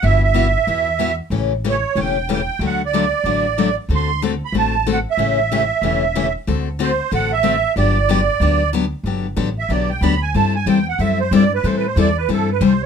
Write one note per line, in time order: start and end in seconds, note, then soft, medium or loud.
0.03 0.55 G1 medium
0.03 0.23 B2 medium
0.03 0.23 E3 medium
0.03 0.23 B3 medium
0.03 0.24 E4 medium
0.03 0.24 F#4 medium
0.03 0.22 E5 medium
0.23 1.16 E5 medium
0.34 0.45 B2 medium
0.34 0.46 E3 medium
0.34 0.46 B3 medium
0.34 0.46 E4 medium
0.34 0.46 F#4 medium
0.67 1.19 E2 medium
0.67 0.88 B2 medium
0.67 0.88 E3 medium
0.67 0.88 B3 medium
0.67 0.88 E4 medium
0.67 0.88 F#4 medium
0.99 1.10 B2 medium
0.99 1.10 E3 medium
0.99 1.11 B3 medium
0.99 1.11 E4 medium
0.99 1.11 F#4 medium
1.30 1.83 A1 medium
1.30 1.52 C#3 medium
1.30 1.52 E3 medium
1.30 1.52 A3 medium
1.30 1.52 C#4 medium
1.30 1.52 G4 medium
1.64 1.75 C#3 medium
1.64 1.75 E3 medium
1.64 1.75 A3 medium
1.64 1.76 C#4 loud
1.64 1.76 G4 loud
1.69 2.00 C#5 medium
1.95 2.47 E1 medium
1.95 2.16 C#3 medium
1.95 2.17 E3 medium
1.95 2.17 A3 medium
1.95 2.17 C#4 medium
1.95 2.17 G4 medium
2.00 2.28 G5 medium
2.29 2.39 C#3 medium
2.29 2.40 E3 medium
2.29 2.40 A3 medium
2.29 2.40 C#4 medium
2.29 2.40 G4 medium
2.33 2.64 G5 medium
2.59 3.11 D2 medium
2.59 2.81 D3 medium
2.59 2.81 F#3 medium
2.59 2.81 A3 medium
2.59 2.81 D4 medium
2.59 2.81 F#4 medium
2.66 2.82 F#5 medium
2.86 3.76 D5 medium
2.93 3.04 D3 medium
2.93 3.04 F#3 medium
2.93 3.05 A3 medium
2.93 3.04 D4 medium
2.93 3.05 F#4 medium
3.24 3.76 A1 medium
3.24 3.45 D3 medium
3.24 3.45 F#3 medium
3.24 3.45 A3 medium
3.24 3.46 D4 medium
3.24 3.46 F#4 medium
3.58 3.68 D3 medium
3.58 3.68 F#3 medium
3.58 3.69 A3 medium
3.58 3.69 D4 medium
3.58 3.69 F#4 medium
3.89 4.41 D2 medium
3.89 4.10 D3 medium
3.89 4.10 A3 medium
3.89 4.10 C4 medium
3.89 4.10 F#4 medium
3.89 4.10 A4 medium
3.95 4.23 C6 loud
4.22 4.33 D3 medium
4.22 4.33 A3 medium
4.22 4.33 C4 medium
4.22 4.33 F#4 medium
4.22 4.33 A4 medium
4.45 4.55 B5 medium
4.52 5.05 A1 medium
4.52 4.74 D3 medium
4.52 4.74 A3 medium
4.52 4.74 C4 medium
4.52 4.75 F#4 medium
4.52 4.75 A4 medium
4.58 4.86 A5 medium
4.87 4.97 D3 medium
4.87 4.97 A3 medium
4.87 4.97 C4 medium
4.87 4.97 F#4 medium
4.87 4.98 A4 loud
4.93 5.00 F#5 medium
5.11 6.33 E5 medium
5.17 5.69 A1 medium
5.17 5.38 C#3 medium
5.17 5.39 E3 medium
5.17 5.39 A3 medium
5.17 5.39 C#4 medium
5.17 5.39 G4 medium
5.52 5.62 C#3 medium
5.52 5.62 E3 medium
5.52 5.62 A3 medium
5.52 5.62 C#4 medium
5.52 5.62 G4 medium
5.82 6.34 E1 medium
5.82 6.03 C#3 medium
5.82 6.03 E3 medium
5.82 6.03 A3 medium
5.82 6.03 C#4 medium
5.82 6.03 G4 medium
6.15 6.26 C#3 medium
6.15 6.26 E3 medium
6.15 6.26 A3 loud
6.15 6.26 C#4 medium
6.15 6.26 G4 medium
6.47 6.99 D2 medium
6.47 6.67 D3 medium
6.47 6.67 A3 medium
6.47 6.68 C4 medium
6.47 6.68 F#4 medium
6.47 6.68 A4 medium
6.79 6.90 D3 medium
6.79 6.91 A3 medium
6.79 6.90 C4 medium
6.79 6.91 F#4 loud
6.79 6.91 A4 medium
6.79 7.11 C5 medium
7.11 7.63 A1 medium
7.11 7.32 D3 medium
7.11 7.32 A3 medium
7.11 7.32 C4 medium
7.11 7.32 F#4 medium
7.11 7.32 A4 medium
7.11 7.31 F#5 loud
7.33 7.74 E5 loud
7.43 7.54 D3 medium
7.43 7.54 A3 medium
7.43 7.55 C4 medium
7.43 7.55 F#4 medium
7.43 7.55 A4 medium
7.76 8.28 G1 medium
7.76 7.96 D3 medium
7.76 7.97 F#3 medium
7.76 7.97 B3 medium
7.76 7.97 D4 medium
7.76 7.97 G4 medium
7.76 8.70 D5 medium
8.09 8.20 D3 medium
8.09 8.19 F#3 medium
8.09 8.20 B3 medium
8.09 8.20 D4 medium
8.09 8.20 G4 loud
8.40 8.92 D2 medium
8.40 8.61 D3 medium
8.40 8.61 F#3 medium
8.40 8.61 B3 medium
8.40 8.62 D4 medium
8.40 8.62 G4 medium
8.73 8.84 D3 medium
8.73 8.84 F#3 medium
8.73 8.84 B3 medium
8.73 8.84 D4 medium
8.73 8.85 G4 loud
9.03 9.36 G1 medium
9.03 9.26 D3 medium
9.03 9.26 F#3 medium
9.03 9.26 B3 medium
9.03 9.26 D4 medium
9.03 9.26 G4 medium
9.36 9.68 A1 medium
9.36 9.48 D3 medium
9.36 9.48 F#3 medium
9.36 9.48 B3 medium
9.36 9.48 D4 medium
9.36 9.48 G4 medium
9.59 9.71 E5 medium
9.69 10.00 B1 medium
9.69 9.90 D3 medium
9.69 9.90 F#3 medium
9.69 9.90 B3 medium
9.69 9.90 D4 medium
9.69 9.91 G4 medium
9.69 9.90 D5 medium
9.90 10.03 G5 medium
10.01 10.33 D2 medium
10.01 10.13 D3 medium
10.01 10.13 F#3 medium
10.01 10.14 B3 medium
10.01 10.14 D4 medium
10.01 10.14 G4 medium
10.01 10.21 B5 medium
10.22 10.35 G#5 medium
10.34 10.65 G2 medium
10.34 10.55 G3 medium
10.34 10.55 C4 medium
10.34 10.55 E4 medium
10.34 10.55 A4 medium
10.34 10.54 A5 medium
10.56 10.68 G#5 medium
10.66 10.98 E2 medium
10.66 10.78 G3 medium
10.66 10.78 C4 medium
10.66 10.78 E4 medium
10.66 10.78 A4 medium
10.66 10.87 G5 medium
10.89 11.01 F#5 medium
10.99 11.31 F#2 medium
10.99 11.20 G3 medium
10.99 11.20 C4 medium
10.99 11.20 E4 medium
10.99 11.20 A4 medium
10.99 11.19 E5 medium
11.20 11.32 C5 medium
11.31 11.63 G2 medium
11.31 11.43 G3 medium
11.31 11.43 C4 medium
11.31 11.43 E4 medium
11.31 11.44 A4 medium
11.31 11.52 D5 loud
11.55 11.66 B4 medium
11.63 11.95 A2 medium
11.63 11.84 E3 medium
11.63 11.85 G3 medium
11.63 11.85 C4 medium
11.63 11.85 E4 medium
11.63 11.85 A4 medium
11.63 11.76 C5 medium
11.77 11.87 B4 medium
11.87 11.97 C5 medium
11.96 12.28 E2 medium
11.96 12.08 E3 medium
11.96 12.08 G3 medium
11.96 12.08 C4 medium
11.96 12.08 E4 medium
11.96 12.08 A4 medium
11.96 12.17 D5 medium
12.18 12.30 B4 medium
12.29 12.60 G2 medium
12.29 12.49 E3 medium
12.29 12.49 G3 medium
12.29 12.49 C4 medium
12.29 12.50 E4 medium
12.29 12.49 A4 medium
12.33 12.50 A4 medium
12.52 12.63 B4 medium
12.61 12.86 C2 medium
12.61 12.72 E3 medium
12.61 12.72 G3 medium
12.61 12.72 C4 loud
12.61 12.72 E4 loud
12.61 12.72 A4 medium
12.65 12.82 C5 medium
12.83 12.86 C#5 medium